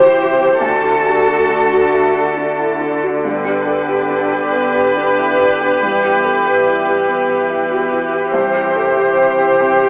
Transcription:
Already playing: felt piano C2 C4 E4 F#4 G4 A4, cello E3, analog synth pad C4 G4 E5, viola G4, violin section C5
0.18 felt piano E4
0.39 felt piano G4
0.61 felt piano D2, cello D3, analog synth pad A3 F#4 D5, viola F#4, violin section A4
0.83 felt piano F#4
1.06 felt piano G4
1.28 felt piano F#4
1.50 felt piano D4
1.73 felt piano F#4
1.94 felt piano A3
2.14 felt piano F#4
2.37 felt piano D4
2.59 felt piano E4
2.81 felt piano D4
3.03 felt piano F#4
3.25 felt piano G2, analog synth pad B3 G4, viola G4, violin section B4
3.45 felt piano G4
3.67 felt piano A4
3.89 felt piano G4
4.10 felt piano D4
4.33 felt piano G4
4.54 felt piano B3
4.75 felt piano G4
4.97 felt piano D4
5.19 felt piano E4
5.39 felt piano D4
5.61 felt piano G4
5.83 felt piano G2, cello E3, analog synth pad E5
6.03 felt piano G4
6.25 felt piano A4
6.47 felt piano G4
6.67 felt piano E4
6.87 felt piano G4
7.08 felt piano B3
7.29 felt piano G4
7.50 felt piano E4
7.72 felt piano F#4
7.93 felt piano E4
8.13 felt piano G4
8.34 felt piano C2, analog synth pad C4 G4, viola G4, violin section C5
8.55 felt piano G4
8.76 felt piano A4
8.97 felt piano G4
9.18 felt piano E4
9.38 felt piano G4
9.61 felt piano C4
9.81 felt piano G4

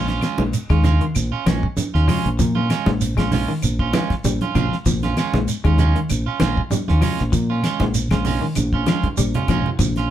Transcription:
Already playing: fingered electric bass A#1, clean electric guitar F3
0.07 clean electric guitar C#4 F4, snare, closed hi-hat, high conga
0.21 clean electric guitar G#3 C#4 F4, snare, closed hi-hat, claves, shekere
0.38 fingered electric bass A#1, clean electric guitar G#3, high conga
0.53 closed hi-hat, shekere
0.70 fingered electric bass D#2, clean electric guitar G#3 C#4 F4, kick, closed hi-hat, claves
0.84 clean electric guitar G#3 F4, muted clean electric guitar stroke, snare, closed hi-hat, high conga, low conga, shekere
1.01 clean electric guitar D#3, closed hi-hat
1.15 fingered electric bass A#1, closed hi-hat, claves, shekere
1.32 clean electric guitar C#4 F4
1.46 fingered electric bass A#1, clean electric guitar F3 G#3 C#4, snare, closed hi-hat, high conga, claves, shekere
1.63 kick
1.77 muted fingered electric bass stroke, closed hi-hat, high conga, shekere
1.94 fingered electric bass D#2, clean electric guitar C#4 F4, snare
2.08 clean electric guitar F3 G#3 C#4 F4, muted fingered electric bass stroke, open hi-hat, low conga, claves, shekere
2.26 fingered electric bass A#1, closed hi-hat
2.39 fingered electric bass A#2, clean electric guitar F3, kick, closed hi-hat, low conga, shekere
2.55 clean electric guitar C#4 F4, high conga
2.70 clean electric guitar G#3 C#4 F4, snare, closed hi-hat, claves, shekere
2.86 fingered electric bass A#1, clean electric guitar G#3, kick, snare, high conga
3.01 closed hi-hat, shekere
3.17 fingered electric bass A#1, clean electric guitar G#3 C#4 F4, kick, snare, closed hi-hat, claves
3.32 clean electric guitar G#3 C#4 F4, snare, open hi-hat, high conga, low conga, shekere
3.48 clean electric guitar D#3
3.62 fingered electric bass A#1, closed hi-hat, claves, shekere
3.79 clean electric guitar C#4 F4, kick
3.93 clean electric guitar F3 G#3 C#4 F4, snare, closed hi-hat, high conga, claves, shekere
4.10 kick, snare, closed hi-hat
4.24 fingered electric bass A#1, clean electric guitar G3, closed hi-hat, high conga, shekere
4.41 clean electric guitar C#4 F4, closed hi-hat, high conga
4.55 fingered electric bass A#1, clean electric guitar F3 G#3 C#4 F4, kick, closed hi-hat, low conga, claves, shekere
4.72 muted fingered electric bass stroke, snare
4.86 fingered electric bass A#1, clean electric guitar F3, kick, snare, closed hi-hat, low conga, shekere
5.03 clean electric guitar C#4 F4, snare, closed hi-hat, high conga
5.17 clean electric guitar G#3 C#4 F4, snare, closed hi-hat, claves, shekere
5.34 fingered electric bass A#1, clean electric guitar G#3, snare, high conga
5.48 closed hi-hat, shekere
5.64 fingered electric bass D#2, clean electric guitar G#3 C#4 F4, kick, closed hi-hat, claves
5.78 clean electric guitar G#3 C#4 F4, closed hi-hat, high conga, low conga, shekere
5.96 clean electric guitar D#3, closed hi-hat
6.10 fingered electric bass A#1, closed hi-hat, claves, shekere
6.26 clean electric guitar C#4 F4
6.40 fingered electric bass A#1, clean electric guitar F3 G#3 C#4 F4, snare, closed hi-hat, high conga, claves, shekere
6.57 kick
6.71 clean electric guitar G3, muted fingered electric bass stroke, closed hi-hat, high conga, shekere
6.88 fingered electric bass D#2, clean electric guitar C#4 F4, snare, high conga
7.01 clean electric guitar F3 G#3 C#4 F4, muted fingered electric bass stroke, open hi-hat, low conga, claves, shekere
7.19 fingered electric bass A#1, snare, closed hi-hat
7.32 fingered electric bass A#2, clean electric guitar F3, kick, closed hi-hat, shekere
7.50 clean electric guitar C#4 F4
7.63 clean electric guitar G#3 C#4 F4, snare, closed hi-hat, claves, shekere
7.80 fingered electric bass A#1, clean electric guitar G#3, kick, snare, high conga
7.94 closed hi-hat, shekere
8.11 fingered electric bass A#1, clean electric guitar G#3 C#4 F4, kick, snare, closed hi-hat, high conga, claves
8.25 clean electric guitar G#3 C#4 F4, open hi-hat, high conga, low conga, shekere
8.42 clean electric guitar D#3
8.55 fingered electric bass A#1, closed hi-hat, high conga, claves, shekere
8.73 clean electric guitar C#4 F4, kick
8.86 clean electric guitar F3 G#3 C#4 F4, snare, closed hi-hat, high conga, claves, shekere
9.03 kick, closed hi-hat, high conga
9.17 fingered electric bass A#1, clean electric guitar G3, closed hi-hat, shekere
9.34 clean electric guitar C#4 F4, closed hi-hat, low conga
9.48 fingered electric bass A#1, clean electric guitar F3 G#3 C#4 F4, kick, closed hi-hat, low conga, claves, shekere
9.66 muted fingered electric bass stroke, low conga
9.79 fingered electric bass A#1, clean electric guitar F3, kick, closed hi-hat, low conga, shekere
9.96 clean electric guitar C#4 F4, snare, closed hi-hat

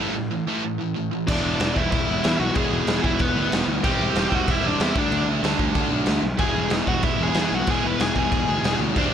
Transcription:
0.00 distorted electric guitar A2 E3 A3
0.16 distorted electric guitar A2 E3
0.31 distorted electric guitar A2 E3
0.47 distorted electric guitar A2 E3 A3
0.63 distorted electric guitar A2 E3
0.80 distorted electric guitar A2 E3
0.96 distorted electric guitar A2 E3
1.12 distorted electric guitar A2 E3
1.27 picked electric bass E1, distorted electric guitar E2 B2, lead electric guitar D4 D5, kick, crash
1.32 distorted electric guitar E3
1.44 picked electric bass E1
1.60 picked electric bass E1, snare, crash
1.74 picked electric bass E1, overdriven electric guitar E2 B2 E3, lead electric guitar E4 E5, kick
1.91 picked electric bass E1, lead electric guitar E4 E5, kick, crash
2.06 picked electric bass E1, distorted electric guitar B2 E3
2.10 distorted electric guitar E2
2.23 distorted electric guitar E2 B2 E3, picked electric bass E2, snare, crash
2.40 picked electric bass B1, lead electric guitar F#4 F#5
2.54 picked electric bass E1, distorted electric guitar E2 B2 E3, lead electric guitar G#4 G#5, kick, crash
2.71 picked electric bass E1
2.87 picked electric bass E1, snare, crash
3.03 picked electric bass E1, overdriven electric guitar E2 B2 E3, lead electric guitar E4 E5, kick
3.19 picked electric bass E1, lead electric guitar B3 B4, kick, crash
3.36 picked electric bass D2, distorted electric guitar E2 B2 E3
3.52 picked electric bass E1, distorted electric guitar E2 B2 E3, snare, crash
3.67 picked electric bass D2
3.83 picked electric bass E1, distorted electric guitar C3 G3 C4, lead electric guitar G4 G5, kick, crash
3.99 picked electric bass E1
4.15 picked electric bass E1, snare, crash
4.30 picked electric bass E1, overdriven electric guitar C3 G3 C4, kick
4.35 lead electric guitar F#4 F#5
4.48 picked electric bass E1, lead electric guitar E4 E5, kick, crash
4.62 picked electric bass E1, distorted electric guitar C3 G3 C4
4.67 lead electric guitar D4 D5
4.78 picked electric bass E2, distorted electric guitar C3 G3 C4, snare, crash
4.82 lead electric guitar E4 E5
4.95 picked electric bass D2, distorted electric guitar D3 A3 D4, lead electric guitar D4 D5, kick
5.12 picked electric bass D2, crash
5.27 picked electric bass D2
5.42 picked electric bass D2, overdriven electric guitar D3 A3 D4, snare, crash
5.59 picked electric bass D2, kick
5.74 picked electric bass D2, distorted electric guitar D3 A3 D4, kick, crash
5.89 picked electric bass B1, distorted electric guitar D3 A3 D4
6.06 picked electric bass D2, snare, crash
6.23 picked electric bass B1
6.38 picked electric bass E1, distorted electric guitar E2 B2 E3, lead electric guitar G#4 G#5, kick, crash
6.56 picked electric bass E1
6.70 picked electric bass E1, snare, crash
6.86 picked electric bass E1, overdriven electric guitar E2 B2 E3, lead electric guitar F#4 F#5, kick
7.03 picked electric bass E1, lead electric guitar E4 E5, kick, crash
7.19 picked electric bass E1, distorted electric guitar B2 E3
7.23 distorted electric guitar E2, lead electric guitar G#4 G#5
7.34 distorted electric guitar E2 B2, picked electric bass E2, snare, crash
7.39 distorted electric guitar E3
7.52 picked electric bass B1, lead electric guitar F#4 F#5
7.67 picked electric bass E1, distorted electric guitar E2 B2 E3, lead electric guitar G#4 G#5, kick, crash
7.85 picked electric bass E1, lead electric guitar B4 B5
8.00 picked electric bass E1, lead electric guitar G#4 G#5, snare, crash
8.14 picked electric bass E1, overdriven electric guitar E2 B2 E3, lead electric guitar G#4, kick
8.19 lead electric guitar G#5
8.32 picked electric bass E1, kick, crash
8.47 picked electric bass D2, distorted electric guitar E2 B2 E3
8.63 picked electric bass E1, distorted electric guitar E2 B2, snare, crash
8.67 distorted electric guitar E3
8.80 picked electric bass D2
8.96 picked electric bass E1, distorted electric guitar C3 G3 C4, lead electric guitar D4 D5, kick, crash

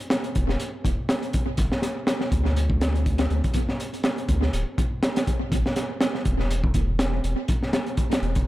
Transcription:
0.00 closed hi-hat
0.10 snare, closed hi-hat
0.24 closed hi-hat
0.35 sub bass E1, kick, closed hi-hat
0.49 snare
0.60 closed hi-hat
0.85 sub bass E1, kick, closed hi-hat
1.09 snare, closed hi-hat
1.23 closed hi-hat
1.33 kick, closed hi-hat
1.57 sub bass G1, kick, closed hi-hat
1.72 snare
1.82 snare, closed hi-hat
2.07 snare, closed hi-hat
2.21 snare
2.32 sub bass D2, kick, closed hi-hat
2.45 snare
2.56 closed hi-hat
2.70 kick
2.81 snare, closed hi-hat
2.95 closed hi-hat
3.06 kick, closed hi-hat
3.18 snare, closed hi-hat
3.30 sub bass D2, closed hi-hat
3.44 kick, closed hi-hat
3.54 kick, closed hi-hat
3.69 snare
3.80 closed hi-hat
3.94 closed hi-hat
4.03 snare, closed hi-hat
4.18 closed hi-hat
4.28 sub bass D2, kick, closed hi-hat
4.42 snare
4.53 sub bass D1, closed hi-hat
4.78 kick, closed hi-hat
5.03 snare, closed hi-hat
5.16 snare, closed hi-hat
5.27 kick, closed hi-hat
5.52 sub bass A1, kick, closed hi-hat
5.66 snare
5.76 snare, closed hi-hat
6.01 snare, closed hi-hat
6.15 snare
6.25 sub bass E1, kick, closed hi-hat
6.40 snare
6.51 closed hi-hat
6.64 kick
6.74 kick, closed hi-hat
6.99 snare, closed hi-hat
7.24 sub bass E1, closed hi-hat
7.48 kick, closed hi-hat
7.63 snare
7.73 snare, closed hi-hat
7.86 closed hi-hat
7.97 kick, closed hi-hat
8.12 snare, closed hi-hat
8.22 sub bass E1, closed hi-hat
8.35 kick, closed hi-hat

